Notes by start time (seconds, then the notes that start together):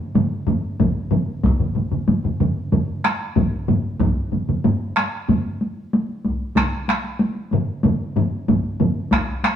0.15 taiko low-mid, taiko mid, taiko high
0.31 taiko high
0.47 taiko low-mid, taiko mid, taiko high
0.64 taiko high
0.80 taiko, taiko low-mid, taiko mid, taiko high
0.96 taiko high
1.11 taiko low-mid, taiko mid, taiko high
1.27 taiko high
1.44 taiko, taiko low-mid, taiko mid, taiko high
1.60 taiko low-mid, taiko mid, taiko high
1.75 taiko low-mid, taiko mid, taiko high
1.92 taiko low-mid, taiko mid, taiko high
2.08 taiko low-mid, taiko mid, taiko high
2.24 taiko low-mid, taiko mid, taiko high
2.40 taiko low-mid, taiko mid, taiko high
2.72 taiko low-mid, taiko mid, taiko high
2.88 taiko high
3.05 taiko rim, taiko high
3.21 taiko high
3.36 taiko, taiko low-mid, taiko mid, taiko high
3.52 taiko high
3.68 taiko low-mid, taiko mid, taiko high
3.84 taiko high
4.00 taiko, taiko low-mid, taiko mid, taiko high
4.16 taiko high
4.32 taiko low-mid, taiko mid, taiko high
4.48 taiko low-mid, taiko mid, taiko high
4.64 taiko low-mid, taiko mid, taiko high
4.81 taiko high
4.97 taiko rim, taiko high
5.29 taiko low-mid, taiko mid, taiko high
5.45 taiko high
5.61 taiko high
5.77 taiko high
5.93 taiko high
6.09 taiko high
6.25 taiko, taiko high
6.40 taiko high
6.56 taiko rim, taiko, taiko high
6.72 taiko high
6.88 taiko rim, taiko high
7.04 taiko high
7.19 taiko high
7.35 taiko high
7.51 taiko low-mid, taiko mid, taiko high
7.83 taiko low-mid, taiko mid, taiko high
8.00 taiko high
8.16 taiko low-mid, taiko mid, taiko high
8.33 taiko high
8.48 taiko, taiko low-mid, taiko mid, taiko high
8.64 taiko high
8.80 taiko low-mid, taiko mid, taiko high
8.96 taiko high
9.11 taiko rim, taiko, taiko high
9.27 taiko high
9.44 taiko rim, taiko high